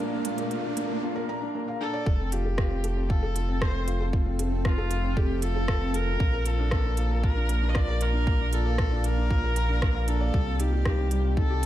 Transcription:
Already playing: A#2 A#3 D4 F4 A#4 D5 F5, riser
0.00 A#3
0.13 D4
0.25 F4, closed hi-hat
0.38 A#4, closed hi-hat
0.51 F4, closed hi-hat
0.65 D4
0.77 A#3, closed hi-hat
0.90 D4
1.03 F4
1.16 A#4
1.29 A#5
1.42 D4
1.55 A#3
1.68 F5
1.81 D4 A4
1.94 D5
2.06 F1 A3 C4 F4 A4, kick
2.20 C4
2.32 F4 G4, closed hi-hat
2.45 A4
2.58 F4, kick, cross-stick
2.71 C4
2.84 A3, closed hi-hat
2.97 C4
3.08 F4 A4, kick
3.23 A4
3.36 F4, closed hi-hat
3.49 C4
3.61 A3 C5, kick, cross-stick
3.75 C4
3.88 F4, closed hi-hat
4.00 A4
4.13 F4, kick
4.26 C4
4.39 A3, closed hi-hat
4.52 C4
4.65 F4, kick, cross-stick
4.78 A4
4.91 F4, closed hi-hat
5.04 C4
5.17 A3 G4, kick
5.30 C4
5.42 F4 A4, closed hi-hat
5.56 A4
5.68 F4, kick, cross-stick
5.82 C4
5.94 A3 A#4, closed hi-hat
6.07 C4
6.20 A#1 A#3 F4 D5 F5, kick
6.33 A#4
6.46 F4 A4, closed hi-hat
6.59 D4
6.71 A#3, kick, cross-stick
6.85 D4
6.97 F4, closed hi-hat
7.11 A#4
7.24 F4 A#4, kick
7.36 D4
7.49 A#3, closed hi-hat
7.62 D4
7.69 D#5
7.75 F4 D5, kick, cross-stick
7.88 A#4
8.01 F4 A#4, closed hi-hat
8.13 D4
8.27 A#3, kick
8.40 D4
8.52 F4 A4, closed hi-hat
8.66 A#4
8.78 F4, kick, cross-stick
8.92 D4
9.04 A#3 A#4, closed hi-hat
9.18 D4
9.31 F4, kick
9.44 A#4
9.56 A#5, closed hi-hat
9.69 D4
9.82 A#3, kick, cross-stick
9.95 F5
10.08 D4 A4, closed hi-hat
10.21 D5
10.33 C2 G3 D#4 G4 C5, kick
10.47 C4
10.60 D#4 G4, closed hi-hat
10.72 G4
10.85 D#4, kick, cross-stick
10.98 C4
11.11 G3, closed hi-hat
11.24 C4
11.37 D#4 A4, kick
11.50 G4
11.63 D#4

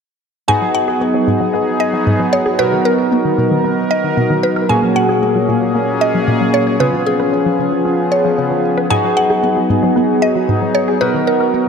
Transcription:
0.48 G#2 F#3 B3 D#4 F#4 G#4 G#5
0.62 F#3
0.75 F#5
0.88 G#4
1.01 B3
1.14 F#3
1.27 G#2
1.40 F#3
1.54 B3
1.80 D#5
1.93 F#3
2.06 G#2
2.19 F#3
2.33 C#5
2.46 G#4
2.58 B2 B3 D#4 F#4 A#4 B4
2.72 D#3
2.85 A#4
2.98 A#4
3.12 B3
3.25 D#3
3.38 B2
3.51 D#3
3.64 B3
3.91 D#5
4.04 D#3
4.17 B2
4.30 D#3
4.43 B4
4.56 A#4
4.69 A#2 A#3 C#4 F#4 G#4 G#5
4.83 F#3
4.96 F#5
5.09 G#4
5.22 A#3
5.35 F#3
5.48 A#2
5.62 F#3
5.75 A#3
6.01 D#5
6.14 F#3
6.27 A#2
6.41 F#3
6.54 C#5
6.67 G#4
6.80 C#3 F3 B3 C#4 F4 G#4 B4
6.93 F3
7.06 G#4
7.20 B4
7.33 C#4
7.46 F3
7.59 C#3
7.72 F3
7.85 C#4
8.12 C#5
8.25 F3
8.38 C#3
8.51 F3
8.77 B4
8.90 G#2 F#3 B3 D#4 F#4 G#4 G#5
9.04 F#3
9.17 F#5
9.30 G#4
9.43 B3
9.56 F#3
9.70 G#2
9.83 F#3
9.96 B3
10.22 D#5
10.35 F#3
10.48 G#2
10.62 F#3
10.75 C#5
10.88 G#4
11.01 B2 B3 D#4 F#4 A#4 B4
11.14 D#3
11.27 A#4
11.40 A#4
11.54 B3

